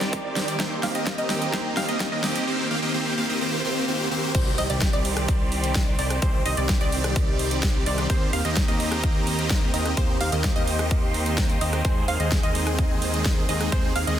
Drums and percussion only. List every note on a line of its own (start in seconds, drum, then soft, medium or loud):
0.01 snare medium
0.01 closed hi-hat soft
0.13 kick loud
0.13 closed hi-hat medium
0.36 snare medium
0.36 open hi-hat loud
0.48 closed hi-hat medium
0.60 kick loud
0.60 snare medium
0.60 closed hi-hat medium
0.83 snare medium
0.83 open hi-hat loud
0.95 closed hi-hat medium
1.07 kick loud
1.07 snare medium
1.07 closed hi-hat medium
1.18 closed hi-hat soft
1.30 snare medium
1.30 open hi-hat loud
1.42 closed hi-hat medium
1.53 kick loud
1.53 snare medium
1.53 closed hi-hat medium
1.77 snare medium
1.77 open hi-hat loud
1.89 closed hi-hat soft
2.00 kick loud
2.00 snare medium
2.00 closed hi-hat medium
2.24 snare medium
2.24 open hi-hat loud
2.36 closed hi-hat soft
4.35 kick loud
4.35 closed hi-hat medium
4.35 crash loud
4.58 open hi-hat loud
4.70 closed hi-hat medium
4.81 kick loud
4.81 snare loud
4.81 closed hi-hat medium
4.93 closed hi-hat soft
5.05 open hi-hat loud
5.17 cross-stick medium
5.17 closed hi-hat medium
5.28 kick loud
5.28 closed hi-hat medium
5.52 open hi-hat loud
5.64 closed hi-hat medium
5.75 kick loud
5.75 snare loud
5.75 closed hi-hat medium
5.99 open hi-hat loud
6.10 cross-stick medium
6.10 closed hi-hat medium
6.22 kick loud
6.22 closed hi-hat medium
6.46 open hi-hat loud
6.57 closed hi-hat medium
6.69 kick loud
6.69 snare loud
6.69 closed hi-hat medium
6.81 closed hi-hat soft
6.92 open hi-hat loud
7.04 cross-stick medium
7.04 closed hi-hat medium
7.16 kick loud
7.16 closed hi-hat medium
7.39 open hi-hat loud
7.51 closed hi-hat medium
7.63 kick loud
7.63 snare loud
7.63 closed hi-hat medium
7.86 open hi-hat loud
7.98 cross-stick medium
7.98 closed hi-hat soft
8.10 kick loud
8.10 closed hi-hat medium
8.33 open hi-hat loud
8.45 closed hi-hat medium
8.56 kick loud
8.56 snare loud
8.56 closed hi-hat medium
8.68 closed hi-hat soft
8.80 open hi-hat loud
8.92 cross-stick medium
8.92 closed hi-hat soft
9.04 kick loud
9.04 closed hi-hat medium
9.27 open hi-hat loud
9.39 closed hi-hat soft
9.50 kick loud
9.50 snare loud
9.50 closed hi-hat medium
9.74 open hi-hat loud
9.86 cross-stick medium
9.86 closed hi-hat soft
9.97 kick loud
9.97 closed hi-hat medium
10.21 open hi-hat loud
10.32 closed hi-hat medium
10.44 kick loud
10.44 snare loud
10.44 closed hi-hat medium
10.56 closed hi-hat soft
10.67 open hi-hat loud
10.79 cross-stick medium
10.79 closed hi-hat medium
10.91 kick loud
10.91 closed hi-hat medium
11.14 open hi-hat loud
11.26 closed hi-hat soft
11.38 kick loud
11.38 snare loud
11.38 closed hi-hat medium
11.50 closed hi-hat soft
11.61 open hi-hat loud
11.73 cross-stick medium
11.73 closed hi-hat medium
11.85 kick loud
11.85 closed hi-hat medium
12.08 open hi-hat loud
12.20 closed hi-hat soft
12.32 kick loud
12.32 snare loud
12.32 closed hi-hat medium
12.43 closed hi-hat soft
12.55 open hi-hat loud
12.67 cross-stick medium
12.67 closed hi-hat soft
12.79 kick loud
12.79 closed hi-hat medium
13.02 open hi-hat loud
13.14 closed hi-hat soft
13.25 kick loud
13.25 snare loud
13.25 closed hi-hat medium
13.49 open hi-hat loud
13.61 cross-stick medium
13.61 closed hi-hat medium
13.72 kick loud
13.72 closed hi-hat medium
13.96 open hi-hat loud
14.07 closed hi-hat medium